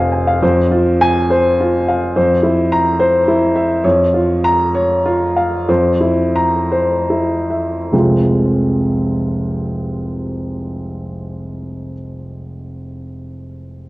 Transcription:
0.00 0.37 F1 medium
0.00 0.38 F2 medium
0.00 0.44 F4 medium
0.00 0.43 C5 medium
0.00 0.27 F5 medium
0.00 0.12 G#5 medium
0.12 0.36 G#5 soft
0.27 0.42 F5 medium
0.42 2.12 F2 medium
0.42 0.89 C5 medium
0.71 1.18 F4 medium
1.01 1.48 G#5 medium
1.30 1.76 C5 medium
1.60 2.05 F4 medium
1.88 2.16 F5 medium
2.16 3.80 F2 medium
2.16 2.60 C5 medium
2.43 2.88 E4 medium
2.72 3.16 A#5 medium
3.00 3.44 C5 medium
3.28 3.73 E4 medium
3.55 3.84 E5 medium
3.84 5.64 F2 medium
3.84 4.32 C#5 medium
4.14 4.62 F4 medium
4.44 4.93 A#5 medium
4.75 5.24 C#5 medium
5.06 5.55 F4 medium
5.37 5.68 F5 soft
5.68 7.88 F2 medium
5.68 6.22 C5 medium
6.01 6.57 E4 medium
6.36 6.94 A#5 medium
6.72 7.34 C5 medium
7.10 7.75 E4 soft
7.50 7.92 E5 soft
7.92 11.92 F1 soft
7.92 11.92 C2 soft
7.92 11.92 F3 soft
7.92 11.92 G#3 soft
7.92 11.93 C4 soft
7.92 11.93 F4 soft

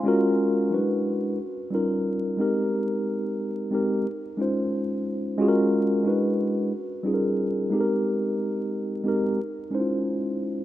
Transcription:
0.00 0.71 G#3 loud
0.00 0.23 F5 medium
0.05 0.71 C#4 loud
0.05 0.72 F4 loud
0.05 0.72 F#4 loud
0.05 0.73 A#4 loud
0.70 0.78 F#3 medium
0.70 1.31 D4 medium
0.70 1.31 E4 medium
0.70 1.32 F#4 medium
0.70 1.32 B4 medium
0.77 1.33 G#3 medium
1.71 2.38 G3 medium
1.71 2.38 C#4 medium
1.71 2.38 D#4 medium
1.71 2.39 F4 medium
1.75 2.40 A#4 medium
2.37 3.56 G#3 medium
2.37 3.57 C4 medium
2.37 3.57 D#4 medium
2.37 3.58 G4 medium
2.37 3.58 A#4 loud
3.71 4.04 G#3 medium
3.71 4.05 C4 medium
3.71 4.05 D#4 medium
3.71 4.06 G4 medium
3.75 4.06 A#4 loud
4.37 5.26 G#3 medium
4.37 5.27 C#4 medium
4.37 5.28 D#4 medium
4.37 5.28 F4 medium
4.42 5.29 C5 medium
5.38 6.02 G#3 loud
5.38 6.05 C#4 loud
5.38 6.05 F4 loud
5.38 6.05 F#4 loud
5.42 5.47 G#4 loud
5.49 6.10 A#4 loud
6.03 6.63 G#3 medium
6.03 6.64 D4 medium
6.03 6.64 E4 medium
6.03 6.65 F#4 medium
6.08 6.65 B4 medium
7.03 7.71 G3 medium
7.03 7.71 C#4 medium
7.03 7.71 D#4 medium
7.03 7.72 F4 medium
7.03 7.13 G#4 medium
7.14 7.76 A#4 medium
7.70 8.89 G#3 medium
7.70 8.90 C4 medium
7.70 8.90 D#4 medium
7.70 8.91 G4 medium
7.74 7.80 A4 medium
7.80 8.94 A#4 loud
9.04 9.37 G#3 medium
9.04 9.38 C4 medium
9.04 9.38 D#4 medium
9.04 9.39 G4 medium
9.08 9.40 A#4 loud
9.71 10.60 G#3 medium
9.71 10.60 C#4 medium
9.71 10.61 D#4 medium
9.71 9.80 E4 medium
9.71 10.62 C5 medium
9.80 10.64 F4 medium

